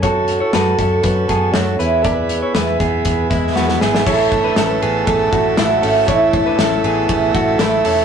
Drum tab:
CC |----------------|----------------|x---------------|----------------|
RD |----------------|----------------|--x-x-x-x-x-x-x-|x-x-x-x-x-x-x-x-|
HH |x-x-x-x-x-x-x-x-|x-x-x-x-x-x-----|--------------o-|p-------------o-|
SD |----o-------o---|----o-------oooo|----o-------o---|----o-------o---|
BD |o-----o-o-o-----|o-----o-o-o-----|o-o-----o-o-----|o-o-----o-o-----|